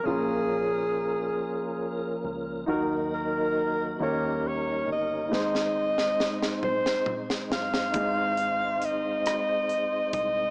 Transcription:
<<
  \new Staff \with { instrumentName = "Alto saxophone" } { \time 6/8 \key aes \mixolydian \tempo 4. = 46 aes'2~ aes'8 r8 | r8 bes'4 bes'8 des''8 ees''8 | ees''4. c''8 r8 f''8~ | f''4 ees''4. ees''8 | }
  \new Staff \with { instrumentName = "Upright piano" } { \time 6/8 \key aes \mixolydian <des' f' bes'>2. | <ees' ges' bes'>4. <bes des' ees' g' des''>4. | <ees' aes' c''>2. | <ees' aes' ees''>2. | }
  \new Staff \with { instrumentName = "Upright piano" } { \clef bass \time 6/8 \key aes \mixolydian bes,4. r4. | ees4. ees4. | aes,4. r4. | aes,4. r4. | }
  \new Staff \with { instrumentName = "Tonewheel organ" } { \time 6/8 \key aes \mixolydian <f bes des' bes'>2. | <f ges bes ees' bes'>4. <g des' ees' bes'>4. | <aes c' ees' c''>2.~ | <aes c' ees' c''>2. | }
  \new Staff \with { instrumentName = "Fingered electric bass" } { \clef bass \time 6/8 \key aes \mixolydian bes,,2~ bes,,8 des,8 | ees,4. ees,4 g,,8 | aes,,2~ aes,,8 ges,,8 | aes,,2~ aes,,8 c,8 | }
  \new DrumStaff \with { instrumentName = "Drums" } \drummode { \time 6/8 r4. r4. | r4. r4. | sn16 sn8 sn16 sn16 sn16 toml16 sn16 toml16 sn16 sn16 sn16 | <hh bd>8 hh8 hh8 <hh ss>8 hh8 <hh bd>8 | }
>>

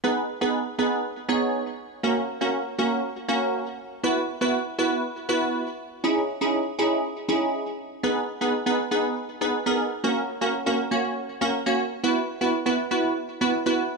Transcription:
\new Staff \with { instrumentName = "Synth stab" } { \time 4/4 \key gis \minor \tempo 4 = 120 <b dis' gis' b'>16 r8 <b dis' gis' b'>16 r8 <b dis' gis' b'>8 r8 <b dis' gis' cis''>8. r8. | <ais cis' fis' ais'>16 r8 <ais cis' fis' ais'>16 r8 <ais cis' fis' ais'>8 r8 <ais cis' fis' ais'>8. r8. | <b e' fis' b'>16 r8 <b e' fis' b'>16 r8 <b e' fis' b'>8 r8 <b e' fis' b'>8. r8. | <cis' dis' e' gis'>16 r8 <cis' dis' e' gis'>16 r8 <cis' dis' e' gis'>8 r8 <cis' dis' e' gis'>8. r8. |
<b dis' gis' b'>16 r8 <b dis' gis' b'>16 r16 <b dis' gis' b'>16 r16 <b dis' gis' b'>8 r8 <b dis' gis' b'>16 r16 <b dis' gis' ais'>16 r8 | <ais cis' fis' ais'>16 r8 <ais cis' fis' ais'>16 r16 <ais cis' fis' ais'>16 r16 <ais cis' fis' cis''>8 r8 <ais cis' fis' ais'>16 r16 <ais cis' fis' cis''>16 r8 | <b e' fis' b'>16 r8 <b e' fis' b'>16 r16 <b e' fis' b'>16 r16 <b e' fis' b'>8 r8 <b e' fis' b'>16 r16 <b e' fis' b'>16 r8 | }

